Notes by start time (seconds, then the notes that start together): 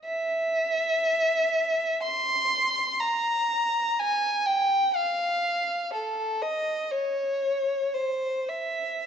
0.05 E5
2.03 C6
3.00 A#5
3.99 G#5
4.46 G5
4.96 F5
5.93 A4
6.42 D#5
6.91 C#5
7.94 C5
8.49 E5